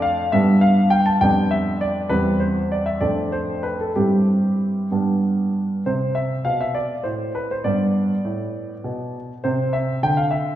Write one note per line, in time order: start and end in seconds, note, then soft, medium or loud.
0.00 0.29 F2 soft
0.00 0.28 A3 soft
0.00 0.29 D4 soft
0.00 0.29 F5 medium
0.32 1.19 G2 soft
0.32 1.17 G3 soft
0.32 1.18 B3 soft
0.32 1.18 D4 soft
0.32 0.59 E5 medium
0.61 0.91 F5 medium
0.90 1.06 G5 medium
1.06 1.21 A5 medium
1.21 2.08 F2 soft
1.21 2.07 G3 soft
1.21 2.07 B3 soft
1.21 2.08 D4 soft
1.21 1.51 G5 medium
1.51 1.78 E5 medium
1.81 2.11 D5 medium
2.09 2.98 E2 soft
2.09 2.97 G3 soft
2.09 2.97 C4 soft
2.09 2.97 E4 soft
2.09 2.37 B4 medium
2.40 2.58 C5 soft
2.72 2.86 D5 medium
2.86 3.01 E5 medium
3.01 3.92 F2 soft
3.01 3.91 A3 soft
3.01 3.91 C4 soft
3.01 3.91 D4 soft
3.01 3.32 D5 medium
3.32 3.63 C5 medium
3.63 3.79 B4 medium
3.81 3.96 A4 soft
3.96 4.88 G2 soft
3.96 4.86 G3 soft
3.96 4.87 C4 soft
3.96 4.87 E4 soft
3.96 5.50 G4 soft
4.91 5.83 G2 soft
4.91 5.81 G3 soft
4.91 5.82 B3 soft
4.91 5.82 D4 soft
5.86 6.34 C3 soft
5.86 7.62 C4 soft
5.86 6.12 C5 soft
6.15 6.42 E5 medium
6.45 6.93 B2 soft
6.45 6.60 F5 medium
6.61 6.75 E5 soft
6.75 7.05 D5 medium
7.03 7.52 A2 soft
7.03 7.31 C5 soft
7.35 7.50 B4 medium
7.51 7.65 C5 soft
7.64 8.13 G2 soft
7.64 9.40 B3 soft
7.64 9.14 D5 medium
8.25 8.72 A2 soft
8.84 9.31 B2 soft
9.44 9.91 C3 soft
9.44 10.55 C4 soft
9.44 9.73 C5 medium
9.73 9.99 E5 medium
10.03 10.50 D3 soft
10.03 10.17 G5 medium
10.17 10.32 F5 medium
10.31 10.55 E5 medium